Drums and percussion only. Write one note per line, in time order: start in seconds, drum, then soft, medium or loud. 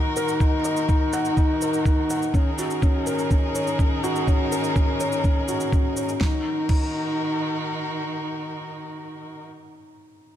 0.16 shaker medium
0.28 shaker soft
0.40 kick medium
0.40 shaker soft
0.65 shaker medium
0.77 shaker soft
0.89 kick medium
0.89 shaker soft
1.13 shaker medium
1.25 shaker soft
1.37 kick medium
1.37 shaker soft
1.61 shaker medium
1.74 shaker soft
1.85 kick medium
1.85 shaker soft
2.10 shaker medium
2.22 shaker soft
2.34 kick medium
2.34 shaker soft
2.58 shaker medium
2.70 shaker soft
2.82 kick medium
2.82 shaker soft
3.07 shaker medium
3.19 shaker soft
3.31 kick medium
3.31 shaker soft
3.55 shaker medium
3.67 shaker soft
3.79 kick medium
3.79 shaker soft
4.04 shaker medium
4.16 shaker soft
4.27 kick medium
4.27 shaker soft
4.52 shaker medium
4.64 shaker soft
4.76 kick medium
4.76 shaker soft
5.00 shaker medium
5.12 shaker soft
5.24 kick medium
5.24 shaker soft
5.48 shaker medium
5.60 shaker soft
5.72 kick medium
5.72 shaker soft
5.97 shaker medium
6.09 shaker soft
6.21 kick medium
6.21 snare medium
6.69 kick medium
6.69 crash medium